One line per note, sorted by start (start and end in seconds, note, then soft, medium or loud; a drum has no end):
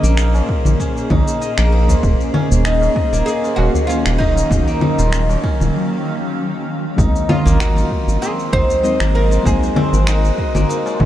0.00 0.42 A#1 medium
0.00 2.03 A#2 medium
0.00 8.66 A#3 medium
0.00 1.58 A#3 loud
0.00 0.79 C#4 loud
0.00 6.98 C#4 medium
0.00 0.17 D#4 medium
0.00 0.34 F4 medium
0.00 3.69 G#4 medium
0.00 4.02 C5 medium
0.00 1.41 D#5 medium
0.04 shaker medium
0.17 1.10 D#4 medium
0.17 finger snap medium
0.17 shaker medium
0.34 1.89 F4 medium
0.34 tabla na medium
0.34 shaker soft
0.49 kick medium
0.65 0.75 A#1 loud
0.65 low conga medium
0.65 shaker medium
0.80 2.33 C#4 loud
0.80 kick medium
0.80 shaker soft
0.97 shaker soft
1.10 1.22 A#1 loud
1.10 1.72 D#4 loud
1.10 kick loud
1.10 tabla na medium
1.10 tabla tin soft
1.10 low conga medium
1.27 tabla tin medium
1.27 shaker medium
1.41 2.96 D#5 medium
1.41 shaker medium
1.58 1.96 A#1 medium
1.58 3.12 A#3 medium
1.58 finger snap medium
1.58 shaker soft
1.72 2.64 D#4 medium
1.89 3.43 F4 medium
1.89 tabla na medium
1.89 tabla ge medium
1.89 shaker medium
2.03 2.15 D#1 loud
2.03 6.98 D#3 medium
2.03 kick loud
2.03 tabla ge medium
2.03 shaker medium
2.21 shaker soft
2.33 8.97 F#3 medium
2.33 3.89 C#4 loud
2.33 tabla tin soft
2.33 low conga medium
2.51 2.89 D#1 medium
2.51 tabla ge medium
2.51 shaker medium
2.65 3.26 D#4 loud
2.65 3.25 D#4 medium
2.65 finger snap medium
2.65 shaker medium
2.82 tabla na medium
2.82 shaker soft
2.96 4.50 D#5 medium
2.96 kick medium
3.13 3.23 D#1 medium
3.13 4.67 A#3 loud
3.13 shaker medium
3.26 4.20 D#4 medium
3.26 3.56 G#4 loud
3.26 shaker medium
3.44 4.98 F4 medium
3.44 shaker soft
3.56 3.69 D#1 loud
3.56 3.87 F#4 loud
3.56 tabla na medium
3.74 6.98 F5 medium
3.74 tabla ge medium
3.74 shaker medium
3.87 5.43 C#4 medium
3.87 4.20 F4 loud
3.87 shaker soft
4.06 4.44 D#1 medium
4.06 finger snap medium
4.06 shaker soft
4.18 5.70 D#4 medium
4.18 4.81 D#4 loud
4.18 kick medium
4.36 tabla na medium
4.36 shaker medium
4.50 4.62 D#1 loud
4.50 6.29 D#5 medium
4.50 kick loud
4.50 tabla ge medium
4.50 shaker medium
4.67 7.45 A#3 medium
4.67 shaker soft
4.81 6.98 D#4 medium
4.81 tabla tin medium
4.81 low conga medium
4.98 5.37 D#1 medium
4.98 7.51 F4 medium
4.98 tabla ge medium
4.98 shaker medium
5.13 finger snap medium
5.13 shaker medium
5.30 tabla na medium
5.30 shaker soft
5.43 8.28 C#4 loud
5.43 kick loud
5.60 5.70 D#1 loud
5.60 low conga medium
5.60 shaker medium
6.96 7.10 G#1 loud
6.96 8.79 F#3 medium
6.96 8.80 G#3 medium
6.96 11.05 G#3 medium
6.96 8.80 A#3 medium
6.96 8.81 C4 medium
6.96 7.60 D#4 medium
6.96 8.81 D#4 loud
6.96 kick loud
6.96 tabla ge medium
6.96 shaker medium
7.16 shaker soft
7.29 11.05 D#4 medium
7.29 7.61 F4 medium
7.29 8.83 D#5 medium
7.29 tabla na medium
7.29 tabla tin soft
7.29 low conga medium
7.45 7.84 G#1 medium
7.45 9.00 A#3 loud
7.45 11.05 C5 medium
7.45 tabla ge medium
7.45 shaker medium
7.50 11.05 A#4 medium
7.60 8.52 D#4 medium
7.60 8.22 F#4 loud
7.60 finger snap medium
7.60 shaker medium
7.76 9.31 F4 medium
7.76 shaker soft
7.91 kick medium
8.08 8.18 G#1 loud
8.08 shaker medium
8.22 9.76 C4 loud
8.22 8.30 G#4 loud
8.22 shaker medium
8.40 shaker soft
8.53 8.64 G#1 loud
8.53 9.14 D#4 medium
8.53 9.15 C5 loud
8.53 kick loud
8.70 tabla ge medium
8.70 shaker medium
8.83 9.42 F#3 medium
8.83 9.42 G#3 medium
8.83 9.42 A#3 medium
8.83 9.42 C4 medium
8.83 9.42 D#4 loud
8.83 10.38 D#5 medium
8.83 tabla na soft
8.83 shaker medium
9.00 9.39 G#1 medium
9.00 10.54 A#3 loud
9.00 finger snap medium
9.00 shaker soft
9.15 10.07 D#4 medium
9.15 9.46 A#4 loud
9.31 10.85 F4 medium
9.31 shaker medium
9.43 9.57 G#1 loud
9.43 10.96 F#3 medium
9.43 10.96 G#3 medium
9.43 10.97 A#3 medium
9.43 10.97 C4 medium
9.43 10.10 G#4 loud
9.43 kick loud
9.43 tabla ge medium
9.43 shaker medium
9.47 10.98 D#4 loud
9.63 shaker soft
9.76 11.05 C4 loud
9.76 tabla na medium
9.76 tabla tin soft
9.76 low conga medium
9.93 10.31 G#1 medium
9.93 shaker medium
10.07 10.69 D#4 loud
10.07 11.05 F#4 medium
10.07 finger snap medium
10.07 shaker medium
10.25 shaker soft
10.38 11.05 D#5 medium
10.38 kick medium
10.55 10.65 G#1 loud
10.55 11.05 A#3 loud
10.55 low conga medium
10.55 shaker medium
10.69 11.05 D#4 medium
10.69 shaker medium
10.86 11.05 F4 medium
10.86 tabla na medium
10.86 shaker soft
11.00 11.05 G#1 loud
11.00 kick loud
11.00 low conga medium